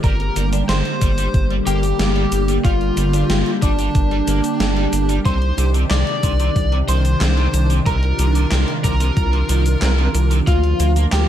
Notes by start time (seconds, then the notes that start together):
0.04 G1 D3 G3 A#3 G4 A#4 A#5, kick, closed hi-hat, shaker
0.20 closed hi-hat
0.36 G1 G3, closed hi-hat, shaker
0.53 D4, closed hi-hat, shaker
0.69 G1 G4 C5 C6, snare, closed hi-hat, shaker
0.85 closed hi-hat
1.02 G1 G3, kick, closed hi-hat, shaker
1.18 G3, closed hi-hat, shaker
1.34 G1, kick, closed hi-hat, shaker
1.50 G3, closed hi-hat
1.67 G1 A#3 G4 G5, closed hi-hat, shaker
1.83 closed hi-hat, shaker
1.99 G1 G4, snare, closed hi-hat, shaker
2.16 G3, closed hi-hat
2.32 G1, closed hi-hat, shaker
2.48 G3, closed hi-hat, shaker
2.64 G1 G3 F4 F5, kick, closed hi-hat, shaker
2.81 closed hi-hat
2.97 G1 G3, closed hi-hat, shaker
3.13 D4, closed hi-hat, shaker
3.30 G1 G4, snare, closed hi-hat, shaker
3.46 closed hi-hat
3.62 G1 G3 D4 D5, kick, closed hi-hat, shaker
3.79 G3, closed hi-hat, shaker
3.95 G1, kick, closed hi-hat, shaker
4.11 G3, closed hi-hat
4.28 G1 A#3, closed hi-hat, shaker
4.44 closed hi-hat, shaker
4.60 G1 G4, snare, closed hi-hat, shaker
4.77 G3, closed hi-hat
4.93 G1, closed hi-hat, shaker
5.09 G3, closed hi-hat, shaker
5.25 C2 C3 D#3 D4 C5 C6, kick, closed hi-hat, shaker
5.42 closed hi-hat
5.58 C2 C3, closed hi-hat, shaker
5.74 C3, closed hi-hat, shaker
5.91 C2 C4 D5 D6, snare, clap, closed hi-hat, shaker
6.07 closed hi-hat
6.23 C2 C3, kick, closed hi-hat, shaker
6.40 C3, closed hi-hat, shaker
6.56 C2, kick, closed hi-hat, shaker
6.72 C3, closed hi-hat
6.88 C2 D#3 C5 C6, closed hi-hat, shaker
7.05 closed hi-hat, shaker
7.21 C2 C4, snare, clap, closed hi-hat, shaker
7.37 C3, closed hi-hat
7.54 C2, closed hi-hat, shaker
7.70 C3, closed hi-hat, shaker
7.86 C2 C3 F4 A#4 A#5, kick, closed hi-hat, shaker
8.03 closed hi-hat
8.19 C2 C3, closed hi-hat, shaker
8.35 C3, closed hi-hat, shaker
8.52 C2 C4, snare, clap, closed hi-hat, shaker
8.68 closed hi-hat
8.84 C2 C3 A#4 A#5, kick, closed hi-hat, shaker
9.00 C3, closed hi-hat, shaker
9.17 C2, kick, closed hi-hat, shaker
9.33 C3, closed hi-hat
9.49 C2 D#3, closed hi-hat, shaker
9.66 closed hi-hat, shaker
9.82 C2 C4, snare, clap, closed hi-hat, shaker
9.98 C3, closed hi-hat
10.15 C2, closed hi-hat, shaker
10.31 C3, closed hi-hat, shaker
10.47 D2 D3 F3 A#3 F4 F5, kick, closed hi-hat, shaker
10.64 closed hi-hat
10.80 D2 A#3, closed hi-hat, shaker
10.96 A#3, closed hi-hat, shaker
11.12 D2 G4 A#4 G5, snare, clap, closed hi-hat, shaker